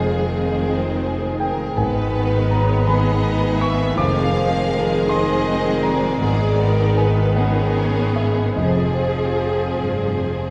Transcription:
Already playing: F1 F2 D#3 G#3 C4 G#4 C5 F5
0.31 F4
0.67 C4 D#4 G#4
1.03 C5
1.40 G#4 A#4 G5
1.76 G#1 G#2 D#3 B3 B4 G#5
2.13 B3
2.51 C#5 A#5
2.86 D#3 B3 G#4 B4 D#5 B5
3.23 B4
3.60 G#4 E5 C#6
3.96 F1 F2 F3 G#3 C4 G#4 A#4 F5 D6
4.33 F3 C4
4.71 D#3 F3
5.09 D#3 C4 D#4 G#4 D#5 C6
5.47 C5
5.83 G#4 D5 A#5
6.21 G#1 G#2 D#3 B3 G#4
6.60 B3 A#4
6.97 B4 G#5
7.36 D#3 B3 C#4 G#4 A#4 F#5
8.16 G#4 E5
8.56 F1 F2 C3 F3 C4 G#4 C5 D#5
8.97 C4
9.38 F4
9.78 G2 C4 F4 G#4
10.18 F2 C5

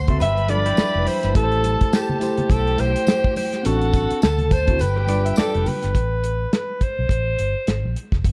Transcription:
Already playing: D2 C5 C6
0.07 D3 C4 F#4 A4 C5 E5, kick, closed hi-hat, low conga
0.20 G1 G4 B4 E5 B5, closed hi-hat, tambourine, high conga
0.38 closed hi-hat, muted conga
0.48 F3 G3 D4 F4 A4 B4 D5, closed hi-hat, high conga
0.65 E4 G4, closed hi-hat
0.77 muted fingered electric bass stroke, snare, tambourine, muted conga, high conga
0.95 F1, muted conga
1.06 C5, open hi-hat, tambourine, high conga
1.23 G1, snare, closed hi-hat
1.34 A1 A3 E4 G4 A4 B4 A5, kick, closed hi-hat, tambourine
1.44 C5
1.52 closed hi-hat, muted conga
1.63 closed hi-hat, tambourine, high conga
1.81 muted fingered electric bass stroke, kick, closed hi-hat
1.93 G4, snare, tambourine
2.09 low conga
2.20 A3 E4 G4 C5, closed hi-hat, tambourine, high conga
2.37 closed hi-hat, low conga
2.50 B1 G4 A4 G5, kick, closed hi-hat, tambourine, muted conga, high conga
2.67 closed hi-hat
2.77 B1 A3 E4 G4 C5, closed hi-hat, tambourine, high conga
2.96 closed hi-hat
3.07 snare, tambourine, muted conga, high conga
3.24 kick, muted conga
3.36 C5, open hi-hat, tambourine, high conga
3.53 snare, closed hi-hat
3.63 A1 C4 D4 F#4 A4 F#5, closed hi-hat, tambourine, muted conga
3.81 closed hi-hat, muted conga
3.93 kick, closed hi-hat, tambourine, high conga
4.11 muted fingered electric bass stroke, closed hi-hat
4.22 D2 A4 A5, snare, tambourine
4.38 closed hi-hat, low conga
4.51 C5, kick, closed hi-hat, tambourine, high conga
4.66 D3 C4 E4 F#4, kick, closed hi-hat, low conga
4.79 G1 G4 B4 G5, closed hi-hat, tambourine, high conga
4.96 G4 B4, muted conga
5.07 G3 D4 F4 B4 D5, closed hi-hat, tambourine, high conga
5.25 E5, closed hi-hat
5.36 A4 B4 D5, muted fingered electric bass stroke, snare, tambourine, muted conga, high conga
5.54 F1 G4 B4, closed hi-hat
5.66 B4, open hi-hat, tambourine, high conga, low conga
5.83 G1, snare, closed hi-hat
5.95 A1, kick, closed hi-hat
6.24 closed hi-hat
6.53 B4, snare, closed hi-hat
6.81 C5, muted fingered electric bass stroke, kick, closed hi-hat
6.99 B1
7.09 A1, kick, closed hi-hat
7.39 G1, closed hi-hat
7.67 G#1, snare, closed hi-hat
7.84 A#1
7.96 closed hi-hat
8.12 F1, kick, snare
8.24 G1, kick, closed hi-hat

